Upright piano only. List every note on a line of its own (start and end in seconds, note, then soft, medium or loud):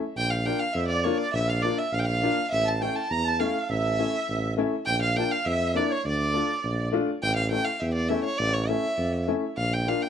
0.46 0.60 A#3 medium
0.46 0.61 D4 medium
0.46 0.61 F4 medium
1.05 1.19 A#3 medium
1.05 1.20 D4 medium
1.05 1.20 F4 medium
1.63 1.78 A#3 medium
1.63 1.78 D4 soft
1.63 1.79 F4 medium
2.22 2.37 A#3 medium
2.22 2.38 D4 medium
2.22 2.38 F4 medium
2.81 2.96 A3 medium
2.81 2.97 C#4 medium
2.81 2.97 E4 medium
3.40 3.55 A3 medium
3.40 3.55 C#4 medium
3.40 3.56 E4 medium
3.99 4.14 A3 medium
3.99 4.14 C#4 medium
3.99 4.14 E4 medium
4.57 4.73 A3 medium
4.57 4.73 C#4 medium
4.57 4.73 E4 loud
5.16 5.31 A#3 medium
5.16 5.32 D4 soft
5.16 5.32 F4 medium
5.74 5.90 A#3 medium
5.74 5.90 D4 medium
5.74 5.91 E4 medium
6.33 6.49 A3 medium
6.33 6.49 D4 soft
6.33 6.50 F4 medium
6.92 7.07 A3 medium
6.92 7.08 D4 medium
6.92 7.08 F4 medium
7.51 7.66 A3 medium
7.51 7.67 C#4 soft
7.51 7.67 E4 medium
8.09 8.25 A3 medium
8.09 8.25 C#4 medium
8.09 8.26 E4 medium
8.69 8.84 A3 medium
8.69 8.84 C#4 medium
8.69 8.85 E4 medium
9.28 9.42 A3 medium
9.28 9.43 C#4 medium
9.28 9.43 E4 medium
9.87 10.01 A#3 medium
9.87 10.02 D4 medium
9.87 10.02 F4 medium